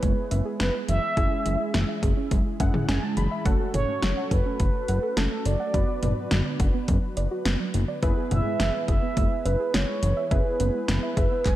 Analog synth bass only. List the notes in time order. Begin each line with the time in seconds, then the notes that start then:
0.03 F#1
0.31 F#1
0.60 F#1
0.88 F#1
1.17 F#1
1.46 F#1
1.74 F#1
2.03 F#1
2.31 F#1
2.60 F#1
2.88 F#1
3.17 F#1
3.46 F#1
3.74 F#1
4.03 F#1
4.31 F#1
4.60 F#1
4.89 F#1
5.17 F#1
5.46 F#1
5.74 F#1
6.03 F#1
6.31 F#1
6.60 F#1
6.88 F#1
7.17 F#1
7.46 F#1
7.74 F#1
8.03 F#1
8.31 F#1
8.60 F#1
8.88 F#1
9.17 F#1
9.46 F#1
9.74 F#1
10.03 F#1
10.31 F#1
10.60 F#1
10.88 F#1
11.17 F#1
11.46 F#1